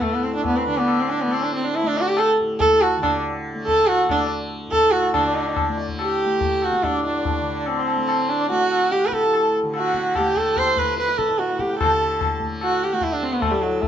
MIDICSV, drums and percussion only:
0, 0, Header, 1, 2, 480
1, 0, Start_track
1, 0, Tempo, 429185
1, 22, Time_signature, 4, 2, 24, 8
1, 3862, Tempo, 422238
1, 7702, Tempo, 415512
1, 11542, Tempo, 408163
1, 15921, End_track
2, 0, Start_track
2, 0, Title_t, "Tabla"
2, 13, Note_on_c, 9, 60, 79
2, 13, Note_on_c, 9, 64, 68
2, 125, Note_off_c, 9, 60, 0
2, 125, Note_off_c, 9, 64, 0
2, 497, Note_on_c, 9, 63, 77
2, 497, Note_on_c, 9, 64, 70
2, 609, Note_off_c, 9, 63, 0
2, 609, Note_off_c, 9, 64, 0
2, 983, Note_on_c, 9, 60, 80
2, 1095, Note_off_c, 9, 60, 0
2, 1464, Note_on_c, 9, 60, 73
2, 1576, Note_off_c, 9, 60, 0
2, 1947, Note_on_c, 9, 63, 73
2, 2059, Note_off_c, 9, 63, 0
2, 2424, Note_on_c, 9, 60, 77
2, 2536, Note_off_c, 9, 60, 0
2, 2909, Note_on_c, 9, 63, 79
2, 2909, Note_on_c, 9, 64, 68
2, 3021, Note_off_c, 9, 63, 0
2, 3021, Note_off_c, 9, 64, 0
2, 3152, Note_on_c, 9, 60, 78
2, 3263, Note_off_c, 9, 60, 0
2, 3390, Note_on_c, 9, 60, 92
2, 3390, Note_on_c, 9, 64, 87
2, 3502, Note_off_c, 9, 60, 0
2, 3502, Note_off_c, 9, 64, 0
2, 4116, Note_on_c, 9, 63, 72
2, 4116, Note_on_c, 9, 64, 67
2, 4230, Note_off_c, 9, 63, 0
2, 4230, Note_off_c, 9, 64, 0
2, 4345, Note_on_c, 9, 60, 77
2, 4459, Note_off_c, 9, 60, 0
2, 4591, Note_on_c, 9, 60, 87
2, 4591, Note_on_c, 9, 64, 84
2, 4704, Note_off_c, 9, 60, 0
2, 4704, Note_off_c, 9, 64, 0
2, 5305, Note_on_c, 9, 63, 73
2, 5305, Note_on_c, 9, 64, 68
2, 5418, Note_off_c, 9, 63, 0
2, 5418, Note_off_c, 9, 64, 0
2, 5543, Note_on_c, 9, 60, 72
2, 5656, Note_off_c, 9, 60, 0
2, 5780, Note_on_c, 9, 60, 96
2, 5780, Note_on_c, 9, 64, 81
2, 5893, Note_off_c, 9, 60, 0
2, 5893, Note_off_c, 9, 64, 0
2, 6263, Note_on_c, 9, 60, 77
2, 6263, Note_on_c, 9, 64, 65
2, 6376, Note_off_c, 9, 60, 0
2, 6376, Note_off_c, 9, 64, 0
2, 6498, Note_on_c, 9, 62, 53
2, 6611, Note_off_c, 9, 62, 0
2, 6622, Note_on_c, 9, 64, 53
2, 6735, Note_off_c, 9, 64, 0
2, 6745, Note_on_c, 9, 60, 82
2, 6858, Note_off_c, 9, 60, 0
2, 7221, Note_on_c, 9, 63, 74
2, 7221, Note_on_c, 9, 64, 67
2, 7334, Note_off_c, 9, 63, 0
2, 7334, Note_off_c, 9, 64, 0
2, 7462, Note_on_c, 9, 60, 57
2, 7575, Note_off_c, 9, 60, 0
2, 7577, Note_on_c, 9, 37, 61
2, 7691, Note_off_c, 9, 37, 0
2, 7705, Note_on_c, 9, 60, 76
2, 7705, Note_on_c, 9, 64, 66
2, 7821, Note_off_c, 9, 60, 0
2, 7821, Note_off_c, 9, 64, 0
2, 7944, Note_on_c, 9, 62, 56
2, 8060, Note_off_c, 9, 62, 0
2, 8189, Note_on_c, 9, 63, 77
2, 8189, Note_on_c, 9, 64, 66
2, 8305, Note_off_c, 9, 63, 0
2, 8305, Note_off_c, 9, 64, 0
2, 8661, Note_on_c, 9, 60, 78
2, 8776, Note_off_c, 9, 60, 0
2, 8912, Note_on_c, 9, 60, 62
2, 9028, Note_off_c, 9, 60, 0
2, 9152, Note_on_c, 9, 60, 77
2, 9267, Note_off_c, 9, 60, 0
2, 9629, Note_on_c, 9, 63, 74
2, 9744, Note_off_c, 9, 63, 0
2, 9879, Note_on_c, 9, 60, 59
2, 9995, Note_off_c, 9, 60, 0
2, 10107, Note_on_c, 9, 62, 78
2, 10222, Note_off_c, 9, 62, 0
2, 10229, Note_on_c, 9, 62, 57
2, 10345, Note_off_c, 9, 62, 0
2, 10348, Note_on_c, 9, 37, 55
2, 10463, Note_off_c, 9, 37, 0
2, 10478, Note_on_c, 9, 62, 57
2, 10593, Note_off_c, 9, 62, 0
2, 10597, Note_on_c, 9, 60, 75
2, 10713, Note_off_c, 9, 60, 0
2, 11059, Note_on_c, 9, 60, 77
2, 11174, Note_off_c, 9, 60, 0
2, 11294, Note_on_c, 9, 37, 56
2, 11409, Note_off_c, 9, 37, 0
2, 11541, Note_on_c, 9, 60, 71
2, 11541, Note_on_c, 9, 64, 62
2, 11658, Note_off_c, 9, 60, 0
2, 11658, Note_off_c, 9, 64, 0
2, 11775, Note_on_c, 9, 64, 49
2, 11893, Note_off_c, 9, 64, 0
2, 12023, Note_on_c, 9, 60, 74
2, 12023, Note_on_c, 9, 64, 67
2, 12140, Note_off_c, 9, 60, 0
2, 12140, Note_off_c, 9, 64, 0
2, 12265, Note_on_c, 9, 64, 49
2, 12383, Note_off_c, 9, 64, 0
2, 12504, Note_on_c, 9, 62, 78
2, 12621, Note_off_c, 9, 62, 0
2, 12632, Note_on_c, 9, 62, 59
2, 12750, Note_off_c, 9, 62, 0
2, 12756, Note_on_c, 9, 37, 59
2, 12873, Note_on_c, 9, 62, 54
2, 12874, Note_off_c, 9, 37, 0
2, 12990, Note_off_c, 9, 62, 0
2, 12992, Note_on_c, 9, 62, 71
2, 13110, Note_off_c, 9, 62, 0
2, 13118, Note_on_c, 9, 62, 59
2, 13232, Note_on_c, 9, 37, 52
2, 13235, Note_off_c, 9, 62, 0
2, 13350, Note_off_c, 9, 37, 0
2, 13358, Note_on_c, 9, 62, 60
2, 13476, Note_off_c, 9, 62, 0
2, 13484, Note_on_c, 9, 60, 94
2, 13484, Note_on_c, 9, 64, 83
2, 13602, Note_off_c, 9, 60, 0
2, 13602, Note_off_c, 9, 64, 0
2, 13958, Note_on_c, 9, 60, 74
2, 13958, Note_on_c, 9, 64, 67
2, 14076, Note_off_c, 9, 60, 0
2, 14076, Note_off_c, 9, 64, 0
2, 14194, Note_on_c, 9, 64, 54
2, 14311, Note_off_c, 9, 64, 0
2, 14433, Note_on_c, 9, 60, 79
2, 14550, Note_off_c, 9, 60, 0
2, 14897, Note_on_c, 9, 63, 77
2, 14897, Note_on_c, 9, 64, 64
2, 15015, Note_off_c, 9, 63, 0
2, 15015, Note_off_c, 9, 64, 0
2, 15383, Note_on_c, 9, 60, 71
2, 15383, Note_on_c, 9, 64, 64
2, 15500, Note_off_c, 9, 60, 0
2, 15500, Note_off_c, 9, 64, 0
2, 15622, Note_on_c, 9, 62, 55
2, 15740, Note_off_c, 9, 62, 0
2, 15864, Note_on_c, 9, 63, 73
2, 15864, Note_on_c, 9, 64, 67
2, 15921, Note_off_c, 9, 63, 0
2, 15921, Note_off_c, 9, 64, 0
2, 15921, End_track
0, 0, End_of_file